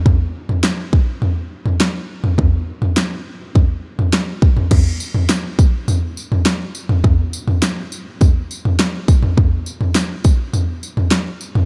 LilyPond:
\new DrumStaff \with { instrumentName = "Drums" } \drummode { \time 4/4 \tempo 4 = 103 <bd tomfh>8. tomfh16 sn8 bd8 tomfh8. tomfh16 sn8. tomfh16 | <bd tomfh>8. tomfh16 sn4 <bd tomfh>8. tomfh16 sn8 bd16 tomfh16 | <cymc bd tomfh>8 tamb16 tomfh16 <sn tamb>8 <bd tamb>8 <tamb tomfh>8 tamb16 tomfh16 <sn tamb>8 tamb16 tomfh16 | <bd tomfh>8 tamb16 tomfh16 <sn tamb>8 tamb8 <bd tamb tomfh>8 tamb16 tomfh16 <sn tamb>8 <bd tamb>16 tomfh16 |
<bd tomfh>8 tamb16 tomfh16 <sn tamb>8 <bd tamb>8 <tamb tomfh>8 tamb16 tomfh16 <sn tamb>8 tamb16 tomfh16 | }